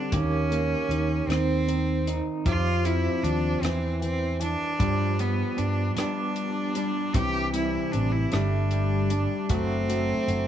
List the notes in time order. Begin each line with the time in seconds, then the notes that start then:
Already playing: D3 G3 C4 D4
0.12 D#2 D#3 A#3 C#4 G4, kick, closed hi-hat
0.50 A#3, closed hi-hat
0.89 D#2 D#3, closed hi-hat
1.27 D#2 D#3 C4, closed hi-hat
1.32 cross-stick
1.68 D#3, closed hi-hat
2.07 D#3 D#4, closed hi-hat
2.45 F2 F3 F4 G4, kick, closed hi-hat
2.85 C4 E4, closed hi-hat
3.23 D#2 F3 D4, closed hi-hat
3.61 E2 E3 C4, cross-stick, closed hi-hat
4.01 E3 C4, closed hi-hat
4.40 E3 D4, closed hi-hat
4.79 G2 F3 G3 G4, kick, closed hi-hat
5.19 G3 B3, closed hi-hat
5.57 G2 G3 D4, closed hi-hat
5.95 G3 B3 D4, cross-stick, closed hi-hat
5.99 G4
6.36 closed hi-hat
6.75 G3 D4, closed hi-hat
7.14 C2 C3 E3 G4, kick, closed hi-hat
7.53 G3 C4 E4, closed hi-hat
7.92 A1 C4 D4, closed hi-hat
8.12 E4
8.32 G1 G3 A3 D4, cross-stick, closed hi-hat
8.71 G3, closed hi-hat
9.10 G3 D4, closed hi-hat
9.49 F#1 F#3 A3 C4 F#4, kick, closed hi-hat
9.90 F#3 A3, closed hi-hat
10.28 F#1 F#3, closed hi-hat